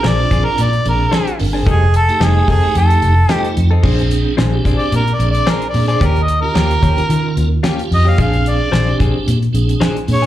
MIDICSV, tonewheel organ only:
0, 0, Header, 1, 2, 480
1, 0, Start_track
1, 0, Tempo, 542986
1, 1471, Time_signature, 4, 2, 24, 8
1, 9072, End_track
2, 0, Start_track
2, 0, Title_t, "Tonewheel organ"
2, 0, Program_c, 0, 16
2, 166, Note_on_c, 0, 60, 73
2, 172, Note_on_c, 0, 62, 63
2, 176, Note_on_c, 0, 65, 73
2, 617, Note_off_c, 0, 60, 0
2, 621, Note_off_c, 0, 62, 0
2, 623, Note_off_c, 0, 65, 0
2, 751, Note_on_c, 0, 60, 60
2, 756, Note_on_c, 0, 62, 54
2, 764, Note_on_c, 0, 68, 69
2, 1127, Note_off_c, 0, 60, 0
2, 1129, Note_off_c, 0, 62, 0
2, 1133, Note_off_c, 0, 68, 0
2, 1229, Note_on_c, 0, 60, 65
2, 1235, Note_on_c, 0, 62, 62
2, 1242, Note_on_c, 0, 70, 75
2, 1470, Note_off_c, 0, 60, 0
2, 1473, Note_off_c, 0, 62, 0
2, 1477, Note_off_c, 0, 70, 0
2, 1844, Note_on_c, 0, 57, 66
2, 1849, Note_on_c, 0, 63, 68
2, 1854, Note_on_c, 0, 67, 74
2, 2197, Note_off_c, 0, 57, 0
2, 2199, Note_off_c, 0, 63, 0
2, 2202, Note_off_c, 0, 67, 0
2, 2320, Note_on_c, 0, 57, 68
2, 2327, Note_on_c, 0, 63, 64
2, 2334, Note_on_c, 0, 67, 73
2, 2775, Note_off_c, 0, 57, 0
2, 2778, Note_off_c, 0, 63, 0
2, 2782, Note_off_c, 0, 67, 0
2, 2900, Note_on_c, 0, 57, 67
2, 2906, Note_on_c, 0, 63, 55
2, 2912, Note_on_c, 0, 65, 65
2, 3282, Note_off_c, 0, 57, 0
2, 3285, Note_off_c, 0, 63, 0
2, 3288, Note_off_c, 0, 65, 0
2, 3384, Note_on_c, 0, 60, 79
2, 3393, Note_on_c, 0, 62, 75
2, 3398, Note_on_c, 0, 68, 95
2, 3846, Note_off_c, 0, 60, 0
2, 3850, Note_off_c, 0, 62, 0
2, 3853, Note_off_c, 0, 68, 0
2, 3999, Note_on_c, 0, 60, 88
2, 4000, Note_on_c, 0, 62, 79
2, 4010, Note_on_c, 0, 67, 95
2, 4454, Note_off_c, 0, 60, 0
2, 4455, Note_off_c, 0, 62, 0
2, 4460, Note_off_c, 0, 67, 0
2, 4587, Note_on_c, 0, 60, 66
2, 4593, Note_on_c, 0, 62, 57
2, 4599, Note_on_c, 0, 68, 63
2, 4965, Note_off_c, 0, 60, 0
2, 4968, Note_off_c, 0, 62, 0
2, 4971, Note_off_c, 0, 68, 0
2, 5066, Note_on_c, 0, 60, 65
2, 5070, Note_on_c, 0, 62, 65
2, 5078, Note_on_c, 0, 68, 73
2, 5309, Note_off_c, 0, 60, 0
2, 5311, Note_off_c, 0, 62, 0
2, 5315, Note_off_c, 0, 68, 0
2, 5675, Note_on_c, 0, 61, 76
2, 5681, Note_on_c, 0, 65, 63
2, 5690, Note_on_c, 0, 67, 79
2, 6033, Note_off_c, 0, 61, 0
2, 6036, Note_off_c, 0, 65, 0
2, 6040, Note_off_c, 0, 67, 0
2, 6157, Note_on_c, 0, 61, 75
2, 6165, Note_on_c, 0, 65, 70
2, 6170, Note_on_c, 0, 70, 82
2, 6613, Note_off_c, 0, 61, 0
2, 6618, Note_off_c, 0, 65, 0
2, 6620, Note_off_c, 0, 70, 0
2, 6747, Note_on_c, 0, 61, 82
2, 6751, Note_on_c, 0, 65, 65
2, 6759, Note_on_c, 0, 67, 80
2, 7125, Note_off_c, 0, 61, 0
2, 7127, Note_off_c, 0, 65, 0
2, 7131, Note_off_c, 0, 67, 0
2, 7231, Note_on_c, 0, 60, 76
2, 7234, Note_on_c, 0, 62, 68
2, 7241, Note_on_c, 0, 68, 75
2, 7689, Note_off_c, 0, 60, 0
2, 7690, Note_off_c, 0, 62, 0
2, 7694, Note_off_c, 0, 68, 0
2, 7844, Note_on_c, 0, 60, 75
2, 7850, Note_on_c, 0, 62, 68
2, 7861, Note_on_c, 0, 67, 86
2, 8296, Note_off_c, 0, 60, 0
2, 8299, Note_off_c, 0, 62, 0
2, 8305, Note_off_c, 0, 67, 0
2, 8424, Note_on_c, 0, 60, 72
2, 8427, Note_on_c, 0, 62, 66
2, 8438, Note_on_c, 0, 68, 88
2, 8802, Note_off_c, 0, 60, 0
2, 8804, Note_off_c, 0, 62, 0
2, 8809, Note_off_c, 0, 68, 0
2, 8906, Note_on_c, 0, 60, 68
2, 8910, Note_on_c, 0, 62, 65
2, 8919, Note_on_c, 0, 68, 72
2, 9072, Note_off_c, 0, 60, 0
2, 9072, Note_off_c, 0, 62, 0
2, 9072, Note_off_c, 0, 68, 0
2, 9072, End_track
0, 0, End_of_file